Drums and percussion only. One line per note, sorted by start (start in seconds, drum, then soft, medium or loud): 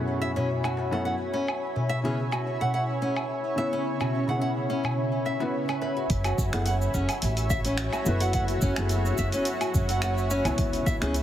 0.37 darbuka tek soft
0.37 darbuka dum medium
0.64 low woodblock medium
0.77 darbuka ka soft
0.77 darbuka tek medium
0.93 darbuka tek medium
1.34 darbuka ka soft
1.34 darbuka tek soft
1.48 low woodblock medium
1.76 darbuka dum medium
2.05 darbuka ka medium
2.05 darbuka dum medium
2.32 low woodblock medium
2.61 darbuka dum medium
3.02 darbuka ka soft
3.17 low woodblock medium
3.59 darbuka ka medium
4.01 darbuka dum medium
4.01 low woodblock medium
4.28 darbuka ka medium
4.28 darbuka tek soft
4.28 darbuka dum medium
4.84 darbuka tek soft
4.84 darbuka dum medium
4.84 low woodblock medium
5.25 darbuka ka soft
5.25 darbuka tek medium
5.40 darbuka tek medium
5.69 low woodblock medium
5.82 darbuka ka medium
5.82 darbuka tek soft
6.10 kick loud
6.10 open hi-hat medium
6.10 cabasa soft
6.24 open hi-hat soft
6.24 cabasa soft
6.24 low woodblock medium
6.38 kick loud
6.38 cabasa medium
6.53 finger snap medium
6.53 open hi-hat soft
6.53 cabasa soft
6.66 open hi-hat medium
6.66 cabasa soft
6.82 cabasa soft
6.94 kick medium
6.94 cabasa medium
7.09 open hi-hat soft
7.09 cabasa soft
7.09 low woodblock medium
7.22 open hi-hat medium
7.22 cabasa soft
7.37 open hi-hat soft
7.37 cabasa soft
7.50 kick loud
7.50 cabasa medium
7.65 open hi-hat soft
7.65 cabasa soft
7.77 finger snap medium
7.77 open hi-hat medium
7.77 cabasa soft
7.93 cabasa soft
7.93 low woodblock medium
8.06 cabasa medium
8.21 open hi-hat medium
8.21 cabasa soft
8.33 kick loud
8.33 open hi-hat medium
8.33 cabasa soft
8.48 open hi-hat soft
8.48 cabasa soft
8.62 kick loud
8.62 cabasa medium
8.76 finger snap medium
8.76 open hi-hat soft
8.76 cabasa soft
8.76 low woodblock medium
8.89 open hi-hat medium
8.89 cabasa soft
9.06 cabasa soft
9.18 kick medium
9.18 cabasa medium
9.32 open hi-hat soft
9.32 cabasa soft
9.45 open hi-hat medium
9.45 cabasa soft
9.61 open hi-hat soft
9.61 cabasa soft
9.61 low woodblock medium
9.74 kick loud
9.74 cabasa medium
9.89 open hi-hat soft
9.89 cabasa soft
10.02 finger snap medium
10.02 open hi-hat medium
10.02 cabasa soft
10.18 cabasa soft
10.31 cabasa medium
10.45 open hi-hat soft
10.45 cabasa soft
10.45 low woodblock medium
10.58 kick loud
10.58 open hi-hat medium
10.58 cabasa soft
10.73 open hi-hat soft
10.73 cabasa soft
10.87 kick loud
10.87 cabasa medium
11.02 finger snap medium
11.02 open hi-hat soft
11.02 cabasa soft
11.14 open hi-hat medium
11.14 cabasa soft